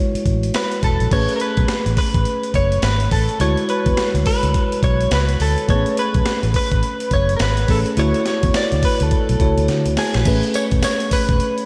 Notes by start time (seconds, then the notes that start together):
Already playing: G#3 E4 F#4 C#5
0.15 muted fingered electric bass stroke, closed hi-hat
0.26 A1, kick, closed hi-hat
0.43 closed hi-hat
0.54 B4, snare, closed hi-hat
0.72 closed hi-hat
0.83 E1 A4, kick, closed hi-hat
1.00 A#1, closed hi-hat
1.11 A1 A3 C#4 G#4 B4 C#5, kick, closed hi-hat, crash
1.29 closed hi-hat
1.36 A#4, closed hi-hat
1.41 B4
1.57 B1, kick, closed hi-hat
1.68 muted fingered electric bass stroke, snare, closed hi-hat
1.86 A1, closed hi-hat
1.97 B4, kick, open hi-hat
2.14 A1, kick, closed hi-hat
2.25 closed hi-hat
2.43 closed hi-hat
2.54 F#1 C#5, kick, closed hi-hat
2.72 closed hi-hat
2.82 G#1 B4, snare, closed hi-hat
3.00 closed hi-hat
3.11 A1 A4, kick, open hi-hat
3.29 closed hi-hat
3.40 D2 G#3 E4 F#4 C#5, closed hi-hat
3.57 closed hi-hat
3.69 B4, closed hi-hat
3.86 E2, kick, closed hi-hat
3.97 muted fingered electric bass stroke, snare, closed hi-hat
4.14 D2, closed hi-hat
4.26 B4, kick, open hi-hat
4.43 D2, closed hi-hat
4.54 kick, closed hi-hat
4.72 closed hi-hat
4.83 B1 C#5, kick, closed hi-hat
5.01 closed hi-hat
5.11 C#2 B4, snare, closed hi-hat
5.29 closed hi-hat
5.40 D2 A4, open hi-hat
5.58 closed hi-hat
5.68 A1 A3 B3 G#4 B4 C#5, kick, closed hi-hat
5.75 C#4
5.86 closed hi-hat
5.97 B4, closed hi-hat
6.14 B1, kick, closed hi-hat
6.26 muted fingered electric bass stroke, snare, closed hi-hat
6.43 A1, closed hi-hat
6.54 B4, kick, open hi-hat
6.71 A1, kick, closed hi-hat
6.83 closed hi-hat
7.00 closed hi-hat
7.11 F#1 C#5, kick, closed hi-hat
7.29 closed hi-hat
7.37 G#1 A#4, snare, closed hi-hat
7.42 B4
7.57 closed hi-hat
7.68 A1 A3 C#4 G#4 A4 B4, kick, open hi-hat
7.86 closed hi-hat
7.97 D2 A3 E4 F#4 C#5, closed hi-hat
8.14 closed hi-hat
8.26 C#5, snare, closed hi-hat
8.43 E2, kick, closed hi-hat
8.54 D5, muted fingered electric bass stroke, snare, closed hi-hat
8.72 D2, closed hi-hat
8.83 B4, kick, open hi-hat
9.00 D2 A4, closed hi-hat
9.11 kick, closed hi-hat
9.29 B1, closed hi-hat
9.40 C#2 A3 E4 F#4 C#5, kick, closed hi-hat
9.57 D2, closed hi-hat
9.68 D3, snare, closed hi-hat
9.86 D2, closed hi-hat
9.97 G#4, snare, open hi-hat
10.14 A#1 B4, snare, closed hi-hat
10.25 A1 A3 C#4 G#4 B4, kick, closed hi-hat, crash, tambourine
10.43 closed hi-hat
10.54 C#5, closed hi-hat, tambourine
10.71 E1, kick, closed hi-hat
10.83 C#5, snare, closed hi-hat, tambourine
11.00 closed hi-hat
11.11 B4, muted fingered electric bass stroke, kick, open hi-hat, tambourine
11.29 E1, kick, closed hi-hat
11.40 closed hi-hat
11.58 closed hi-hat